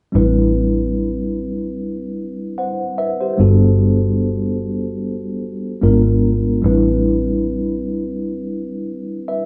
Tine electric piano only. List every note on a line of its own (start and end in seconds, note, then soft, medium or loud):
0.12 2.52 G3 medium
0.12 2.52 C4 medium
0.12 2.53 D4 medium
0.12 2.53 E4 medium
0.12 2.54 B4 medium
2.58 2.96 C5 soft
2.58 2.96 F#5 soft
2.98 3.19 B4 soft
2.98 3.19 E5 medium
3.21 3.59 G4 soft
3.21 3.58 C5 medium
3.38 5.77 G3 medium
3.38 5.77 B3 medium
3.38 5.78 D4 medium
3.38 5.78 F#4 medium
3.38 5.79 A4 medium
5.81 6.62 G#3 medium
5.81 6.62 B3 medium
5.81 6.63 D4 medium
5.81 6.63 F4 medium
5.81 6.63 A#4 medium
6.62 9.46 G3 medium
6.62 9.46 C4 medium
6.62 9.46 D4 medium
6.62 9.46 E4 medium
6.62 8.63 B4 medium
9.28 9.46 B4 soft
9.28 9.45 E5 medium